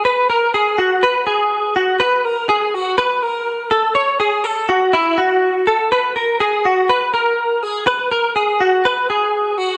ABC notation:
X:1
M:4/4
L:1/8
Q:1/4=123
K:F#mix
V:1 name="Clean electric guitar"
B A G F B G2 F | B A G F B A2 =A | c G =A F E F2 A | B A G F B A2 G |
B A G F B G2 F |]